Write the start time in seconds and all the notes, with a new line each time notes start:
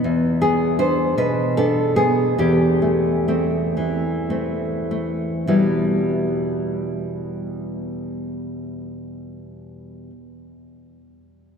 0.04 E2
0.41 B3 G#4
0.79 B3 D4 C5
1.18 B2 B4
1.57 B3 D4 A4
1.96 B3 G#4
2.38 E2 G4
2.82 A3
3.28 A3 C4
3.77 E3
4.30 A3 C4
4.91 A3
5.47 E2 B2 G3 B3 E4